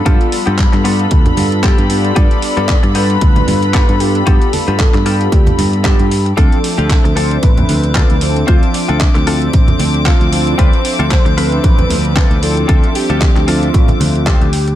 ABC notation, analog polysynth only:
X:1
M:4/4
L:1/8
Q:"Swing 16ths" 1/4=114
K:Ddor
V:1 name="Analog polysynth"
[G,B,DFA]3 [G,B,DFA]4 [G,B,DFA] | [G,B,DFA]3 [G,B,DFA]4 [G,B,DFA] | [G,B,DFA]3 [G,B,DFA]4 z | [F,CDAe]3 [F,CDAe]4 [F,CDEA] |
[F,CDAe]3 [F,CDAe]4 [F,CDEA] | [F,CDAe]3 [F,CDAe]4 [F,CDEA] | [F,CDAe]3 [F,CDAe]4 z |]